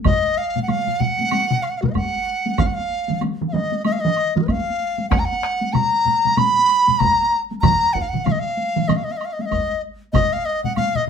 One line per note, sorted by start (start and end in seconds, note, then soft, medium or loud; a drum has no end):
0.04 0.39 D#5 loud
0.04 taiko loud
0.04 taiko low-mid loud
0.04 taiko high medium
0.04 high woodblock medium
0.38 0.62 F5 medium
0.56 taiko low-mid medium
0.56 taiko high medium
0.63 0.70 F#5 medium
0.68 1.02 F5 loud
0.68 taiko low-mid medium
0.68 taiko high medium
0.68 high woodblock soft
0.88 taiko low-mid medium
1.00 1.64 F#5 loud
1.00 taiko low-mid loud
1.00 taiko high medium
1.19 taiko high medium
1.31 taiko high medium
1.31 high woodblock medium
1.51 taiko low-mid loud
1.62 1.71 F5 medium
1.62 high woodblock soft
1.70 1.79 F#5 medium
1.78 1.81 F5 loud
1.82 1.84 F#4 soft
1.82 1.86 A#4 soft
1.82 taiko low-mid loud
1.82 taiko high medium
1.86 1.88 B4 medium
1.86 1.91 D#5 medium
1.92 1.94 F5 medium
1.92 2.60 F#5 loud
1.92 taiko medium
1.92 taiko high medium
1.92 high woodblock soft
2.46 taiko high medium
2.58 2.68 F5 medium
2.58 taiko loud
2.58 taiko mid loud
2.58 taiko high medium
2.58 high woodblock medium
2.66 2.75 F#5 medium
2.74 3.22 F5 loud
3.09 taiko mid medium
3.09 taiko high medium
3.21 taiko mid medium
3.21 taiko high medium
3.21 high woodblock soft
3.41 taiko mid medium
3.48 3.54 F5 medium
3.53 3.84 D#5 medium
3.53 taiko mid loud
3.53 taiko high medium
3.72 taiko high medium
3.84 3.94 D#5 medium
3.84 taiko high medium
3.84 high woodblock medium
3.92 4.02 F5 medium
4.00 4.36 D#5 medium
4.05 taiko mid loud
4.16 high woodblock soft
4.36 4.38 F4 soft
4.36 4.41 F#4 soft
4.36 taiko mid loud
4.36 taiko high medium
4.42 4.44 A#4 soft
4.42 4.46 B4 medium
4.42 4.49 D#5 medium
4.48 5.09 F5 loud
4.48 taiko medium
4.48 taiko high medium
4.48 high woodblock soft
4.98 taiko high medium
5.10 5.21 F#5 loud
5.10 taiko rim medium
5.10 taiko loud
5.10 taiko high medium
5.10 high woodblock medium
5.19 5.26 A#5 medium
5.25 5.74 F#5 loud
5.43 taiko rim medium
5.62 taiko high medium
5.73 6.39 A#5 loud
5.73 taiko low-mid loud
5.73 taiko high medium
5.73 high woodblock soft
6.06 taiko low-mid medium
6.06 taiko high medium
6.25 taiko low-mid medium
6.25 taiko high medium
6.37 7.01 B5 loud
6.37 taiko low-mid loud
6.37 taiko high medium
6.37 high woodblock medium
6.69 high woodblock soft
6.88 taiko low-mid medium
6.88 taiko high medium
6.99 7.40 A#5 loud
6.99 taiko medium
6.99 taiko low-mid loud
6.99 taiko high medium
6.99 high woodblock soft
7.51 taiko high medium
7.61 7.95 A#5 loud
7.61 taiko loud
7.61 taiko low-mid loud
7.61 taiko mid loud
7.61 taiko high medium
7.61 high woodblock medium
7.93 8.03 F#5 medium
7.93 taiko medium
8.02 8.10 F5 medium
8.09 8.26 F#5 medium
8.14 taiko low-mid medium
8.14 taiko mid medium
8.25 8.33 F5 medium
8.25 taiko low-mid loud
8.25 taiko mid loud
8.25 taiko high medium
8.25 high woodblock soft
8.32 8.41 D#5 medium
8.39 8.89 F5 medium
8.57 taiko high soft
8.76 taiko low-mid medium
8.76 taiko mid medium
8.76 taiko high medium
8.88 8.98 D#5 medium
8.88 taiko low-mid loud
8.88 taiko mid loud
8.88 taiko high medium
8.88 high woodblock medium
8.96 9.06 F5 medium
9.04 9.13 D#5 medium
9.12 9.19 F5 medium
9.17 9.27 D#5 medium
9.17 high woodblock soft
9.25 9.34 F5 medium
9.33 9.43 D#5 medium
9.39 9.47 F5 medium
9.39 taiko high medium
9.46 9.82 D#5 medium
9.51 taiko medium
9.51 taiko high medium
9.51 high woodblock medium
10.13 10.34 D#5 loud
10.13 taiko loud
10.13 taiko low-mid loud
10.13 taiko high medium
10.13 high woodblock medium
10.33 10.47 F5 loud
10.45 10.64 D#5 medium
10.64 10.76 F#5 medium
10.64 taiko low-mid medium
10.64 taiko high medium
10.76 10.97 F5 loud
10.76 taiko low-mid medium
10.76 taiko high medium
10.76 high woodblock medium
10.95 11.07 D#5 medium
10.95 taiko low-mid medium